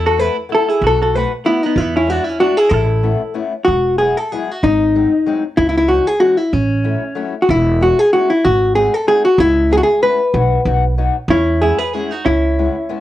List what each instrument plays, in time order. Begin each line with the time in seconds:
Already playing: upright bass E2
0.06 hollow-body jazz guitar F#4 A4
0.17 steel-string acoustic guitar A3 B3 E4 A4, hollow-body jazz guitar E4 B4
0.49 steel-string acoustic guitar A3 B3 E4 A4, hollow-body jazz guitar E4
0.55 hollow-body jazz guitar A4
0.69 hollow-body jazz guitar E4 G#4
0.82 upright bass B1, hollow-body jazz guitar F#4
0.87 hollow-body jazz guitar A4
1.02 hollow-body jazz guitar F#4 A4
1.14 steel-string acoustic guitar A3 B3 D#4 F#4, hollow-body jazz guitar F#4 B4
1.44 steel-string acoustic guitar A3 B3 D#4 F#4, hollow-body jazz guitar B3 E4
1.63 hollow-body jazz guitar B3 D#4
1.76 upright bass E2, hollow-body jazz guitar E4
1.80 hollow-body jazz guitar B3
1.96 hollow-body jazz guitar C#4 E4
2.07 steel-string acoustic guitar G#3 B3 D4 E4, hollow-body jazz guitar F#4
2.12 hollow-body jazz guitar D4
2.24 hollow-body jazz guitar E4
2.29 hollow-body jazz guitar C#4
2.40 steel-string acoustic guitar G#3 B3 D4 E4, hollow-body jazz guitar D4 F#4
2.57 hollow-body jazz guitar E4 G#4
2.69 upright bass A1, hollow-body jazz guitar A4
2.74 hollow-body jazz guitar E4
3.03 steel-string acoustic guitar A3 B3 C#4 E4
3.34 steel-string acoustic guitar A3 B3 C#4 E4
3.65 upright bass E1, hollow-body jazz guitar F#4
3.98 steel-string acoustic guitar F#3 G#3 B3 E4, hollow-body jazz guitar G#4
4.17 hollow-body jazz guitar A4
4.32 steel-string acoustic guitar F#3 G#3 B3 E4, hollow-body jazz guitar G#4
4.51 hollow-body jazz guitar F#4
4.63 upright bass G#1, hollow-body jazz guitar D#4
4.95 steel-string acoustic guitar F#3 G#3 C4 D#4
5.26 steel-string acoustic guitar F#3 G#3 C4 D#4
5.57 upright bass C#2, hollow-body jazz guitar E4
5.69 hollow-body jazz guitar E4
5.77 hollow-body jazz guitar E4
5.88 steel-string acoustic guitar E3 G#3 C#4 D#4, hollow-body jazz guitar F#4
6.07 hollow-body jazz guitar G#4
6.20 steel-string acoustic guitar E3 G#3 C#4 D#4, hollow-body jazz guitar F#4
6.37 hollow-body jazz guitar E4
6.53 upright bass A1, hollow-body jazz guitar C#4
6.84 steel-string acoustic guitar F#3 A3 C#4 E4
7.15 steel-string acoustic guitar F#3 A3 C#4 E4
7.42 hollow-body jazz guitar F#4
7.49 upright bass E1, hollow-body jazz guitar E4
7.81 steel-string acoustic guitar G#3 B3 C#4 E4, hollow-body jazz guitar F#4
7.99 hollow-body jazz guitar G#4
8.13 steel-string acoustic guitar G#3 B3 C#4 E4, hollow-body jazz guitar F#4
8.30 hollow-body jazz guitar E4
8.44 upright bass G#1, hollow-body jazz guitar F#4
8.75 steel-string acoustic guitar G#3 C4 D#4 F#4, hollow-body jazz guitar G#4
8.94 hollow-body jazz guitar A4
9.07 steel-string acoustic guitar G#3 C4 D#4 F#4, hollow-body jazz guitar G#4
9.25 hollow-body jazz guitar F#4
9.38 upright bass C#2, hollow-body jazz guitar E4
9.71 steel-string acoustic guitar G#3 B3 C#4 E4, hollow-body jazz guitar G#4
9.77 hollow-body jazz guitar F#4
9.83 hollow-body jazz guitar G#4
10.02 steel-string acoustic guitar G#3 B3 C#4 E4, hollow-body jazz guitar B4
10.34 upright bass B1, steel-string acoustic guitar F#3 B3 E4 F#4
10.65 upright bass B1, steel-string acoustic guitar F#3 B3 D#4 F#4
10.98 steel-string acoustic guitar F#3 B3 D#4 F#4
11.28 upright bass E2, hollow-body jazz guitar C#4 E4
11.62 steel-string acoustic guitar G#3 B3 C#4 E4, hollow-body jazz guitar E4 G#4
11.78 hollow-body jazz guitar G#4 B4
11.93 steel-string acoustic guitar G#3 B3 C#4 E4, hollow-body jazz guitar E4 G#4
12.11 hollow-body jazz guitar D#4 F#4
12.25 upright bass C#2, hollow-body jazz guitar C#4 E4
12.59 steel-string acoustic guitar G#3 B3 C#4 E4
12.89 steel-string acoustic guitar G#3 B3 C#4 E4